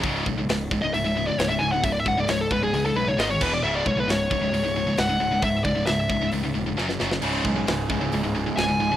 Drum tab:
CC |----------------|--------------x-|----------------|----------------|
HH |o---o---o---o---|o---o---o---o---|----o---o---o---|o---o---o-------|
SD |----o-------o---|----o-------o---|----o-------o---|----o-------oooo|
BD |o-o---o---------|o-o---o-------o-|--o---o---------|o-o---o---------|

CC |x---------------|
HH |----o---o---o---|
SD |----o-------o---|
BD |--o---o---------|